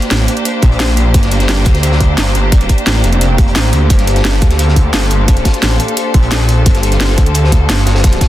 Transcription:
Already playing: A#3 D4 G4 C5 F5 A#5
0.02 closed hi-hat
0.11 A1, snare, closed hi-hat
0.28 closed hi-hat
0.37 closed hi-hat
0.45 closed hi-hat
0.62 A#1, kick, closed hi-hat
0.72 closed hi-hat
0.80 snare, closed hi-hat
0.97 closed hi-hat
1.14 G1, kick, closed hi-hat
1.23 snare, closed hi-hat
1.31 closed hi-hat
1.40 snare, closed hi-hat
1.48 snare, closed hi-hat
1.65 D2, kick, snare, closed hi-hat
1.75 snare, closed hi-hat
1.83 closed hi-hat
1.92 snare
2.00 kick, closed hi-hat
2.18 G1, snare, closed hi-hat
2.27 closed hi-hat
2.35 G1, closed hi-hat
2.52 kick, closed hi-hat
2.61 closed hi-hat
2.69 kick, closed hi-hat
2.78 closed hi-hat
2.86 A1, snare, closed hi-hat
3.04 F1, closed hi-hat
3.13 closed hi-hat
3.21 closed hi-hat
3.38 kick, closed hi-hat
3.48 closed hi-hat
3.55 A1, snare, closed hi-hat
3.73 D2, closed hi-hat
3.90 G1 A4, kick, closed hi-hat
3.98 snare, closed hi-hat
4.07 closed hi-hat
4.16 C6, snare, closed hi-hat
4.24 snare, closed hi-hat
4.41 D2, kick, snare, closed hi-hat
4.50 snare, closed hi-hat
4.59 closed hi-hat
4.68 snare
4.76 kick, closed hi-hat
4.93 G1, snare, closed hi-hat
5.02 closed hi-hat
5.10 G1, closed hi-hat
5.28 kick, closed hi-hat
5.37 closed hi-hat
5.45 kick, snare, closed hi-hat
5.54 closed hi-hat
5.62 A1, snare, closed hi-hat
5.80 closed hi-hat
5.88 closed hi-hat
5.97 closed hi-hat
6.14 A#1, kick, closed hi-hat
6.23 closed hi-hat
6.31 snare, closed hi-hat
6.49 closed hi-hat
6.66 G1, kick, closed hi-hat
6.75 snare, closed hi-hat
6.83 closed hi-hat
6.92 snare, closed hi-hat
7.00 snare, closed hi-hat
7.17 D2, kick, snare, closed hi-hat
7.26 closed hi-hat
7.34 closed hi-hat
7.44 snare
7.52 kick, closed hi-hat
7.70 G1, snare, closed hi-hat
7.78 closed hi-hat
7.86 G1, snare, closed hi-hat
7.95 snare, closed hi-hat
8.04 kick, snare, closed hi-hat
8.12 closed hi-hat
8.21 kick, snare, closed hi-hat

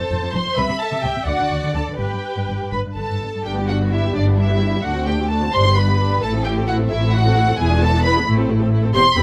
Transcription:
Already playing: A4 C5 A5
0.10 F1 F2
0.22 F2
0.33 F1 F2 C5 C6
0.46 F2
0.56 C2 C3 B4 E5 B5
0.69 C3
0.79 A4 A5
0.92 C3
1.03 C2 C3 G4 G5
1.16 C3
1.27 D2 D3 F#4 D5 F#5
1.39 D3
1.51 D2 D3
1.63 D3
1.74 D2 D3 A4 A5
1.87 D3
1.99 G1 G2 G4 B4 G5
2.12 G2
2.36 G2
2.48 G1 G2
2.61 G2
2.72 G1 G2 B4 B5
2.85 G2
2.96 G1 G2 A4 A5
3.09 G2
3.21 G1 G2
3.34 G2
3.44 G1 G2 G3 D4 G4 G5
3.57 B3 G4
3.68 G3 D4 F#4 F#5
3.80 B3 G4
3.91 G3 D4 E4 E5
4.03 B3 G4
4.14 G1 G2 G3 D4 D5
4.26 B3 G4
4.38 G3 D4 E4 E5
4.50 B3 G4
4.61 G3 D4
4.72 B3 G4
4.84 D2 A3 D4 F#4 F#5
4.95 C4 F#4
5.06 A3 D4 G4 G5
5.19 C4 F#4
5.30 A3 D4 A4 A5
5.42 C4 F#4
5.53 G1 G2 G3 D4 C5 C6
5.66 B3 G4
5.76 G3 D4 B4 B5
5.89 B3 G4
6.00 G3 D4
6.11 B3 G4
6.22 A1 A2 A3 E4 A4 A5
6.34 C4 A4
6.44 A3 E4 G4 G5
6.56 C4 A4
6.67 A3 E4 F#4 F#5
6.79 C4 A4
6.90 A1 A2 A3 E4 E5
7.02 C4 A4
7.12 A3 E4 F#4 F#5
7.25 C4 A4
7.36 A3 E4
7.48 C4 A4
7.58 E1 E2 B3 E4 G#4 G#5
7.71 D4 G#4
7.81 B3 E4 A4 A5
7.93 D4 G#4
8.04 B3 E4 B4 B5
8.15 D4 G#4
8.27 A1 A2 A3 E4
8.38 C4 A4
8.49 A3 E4
8.61 C4 A4
8.72 A3 E4
8.83 C4 A4
8.94 E1 E2 C4 G4 C5 C6
9.16 E1 E2 C4 G4 B4 B5

